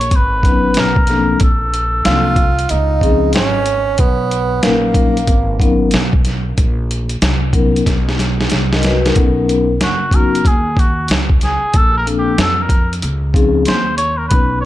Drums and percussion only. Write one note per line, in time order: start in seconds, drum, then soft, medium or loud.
0.01 closed hi-hat medium
0.11 kick medium
0.11 closed hi-hat medium
0.43 kick medium
0.43 closed hi-hat medium
0.74 snare loud
0.74 closed hi-hat medium
0.96 kick loud
1.07 snare soft
1.07 closed hi-hat medium
1.40 kick loud
1.40 closed hi-hat medium
1.74 closed hi-hat medium
2.05 snare loud
2.05 closed hi-hat medium
2.36 kick loud
2.36 closed hi-hat medium
2.59 closed hi-hat medium
2.69 closed hi-hat medium
3.01 kick medium
3.01 closed hi-hat medium
3.33 snare loud
3.33 closed hi-hat medium
3.66 closed hi-hat medium
3.98 kick loud
3.98 closed hi-hat medium
4.31 closed hi-hat medium
4.63 snare loud
4.63 closed hi-hat medium
4.94 kick medium
4.94 closed hi-hat medium
5.17 closed hi-hat medium
5.27 kick medium
5.27 closed hi-hat medium
5.60 kick medium
5.60 closed hi-hat medium
5.91 snare loud
5.91 closed hi-hat medium
6.13 kick loud
6.25 snare soft
6.25 closed hi-hat medium
6.58 kick loud
6.58 closed hi-hat medium
6.91 closed hi-hat medium
7.09 closed hi-hat soft
7.22 snare loud
7.22 closed hi-hat medium
7.53 kick medium
7.53 closed hi-hat medium
7.76 closed hi-hat medium
7.86 kick medium
7.86 snare medium
7.86 closed hi-hat medium
8.09 snare medium
8.19 snare medium
8.19 closed hi-hat medium
8.41 snare medium
8.50 snare medium
8.50 closed hi-hat medium
8.73 snare medium
8.83 snare loud
8.83 closed hi-hat medium
9.06 snare medium
9.06 closed hi-hat medium
9.16 kick loud
9.16 closed hi-hat medium
9.49 closed hi-hat medium
9.81 snare loud
9.81 closed hi-hat medium
10.11 kick medium
10.11 closed hi-hat medium
10.35 closed hi-hat medium
10.45 kick medium
10.45 closed hi-hat medium
10.77 kick medium
10.77 closed hi-hat medium
11.08 snare loud
11.08 closed hi-hat medium
11.30 kick medium
11.41 snare soft
11.41 closed hi-hat medium
11.74 kick loud
11.74 closed hi-hat medium
12.07 closed hi-hat medium
12.38 snare loud
12.38 closed hi-hat medium
12.69 kick medium
12.69 closed hi-hat medium
12.93 closed hi-hat soft
13.02 closed hi-hat medium
13.34 kick medium
13.34 closed hi-hat medium
13.65 snare loud
13.65 closed hi-hat medium
13.98 closed hi-hat medium
14.31 kick loud
14.31 closed hi-hat medium